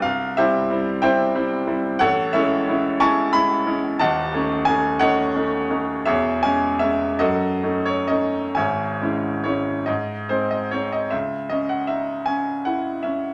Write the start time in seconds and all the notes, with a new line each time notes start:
0.02 C2 F5
0.37 G3 C4 E4 G4 C5 E5
0.70 G3 C4 E4
1.02 G3 C4 E4 C5 E5 G5
1.35 G3 C4 E4
1.67 G3 C4 E4
1.99 A1 A4 C#5 F#5
2.33 G#3 C#4 E4 A4 C#5 E5
2.68 G#3 C#4 E4
3.00 G#3 C#4 E4 G#5 A5 C#6
3.33 G#3 C#4 E4 B5
3.66 G#3 C#4 E4
3.99 D#1 D#2 D#5 F#5 A5
4.34 A3 C#4 D#4
4.65 A3 C#4 D#4 G#5
4.99 A3 C#4 D#4 C#5 D#5 F#5
5.35 A3 C#4 D#4
5.70 A3 C#4 D#4
6.05 E1 E2 G#4 C#5 E5
6.43 G#3 C#4 G#5
6.79 G#3 C#4 E5
7.19 F#2 F#4 A4 D#5
7.63 A3 C#4 D#4
7.86 C#5
8.08 A3 C#4 D#4 D#5
8.55 G#1 G#2 C#5 E5 G#5
9.02 G#3 C#4 E4
9.44 G#3 C#4 E4 C#5
9.86 G#2 D#5
10.29 G#3 C4 D#4 C5
10.51 D#5
10.71 G#3 C4 D#4 C#5
10.92 D#5
11.11 C#2 E5
11.49 C#4 D#5
11.69 F#5
11.87 D#4 E5
12.26 C#4 G#5
12.65 E4 F#5
13.03 C#4 E5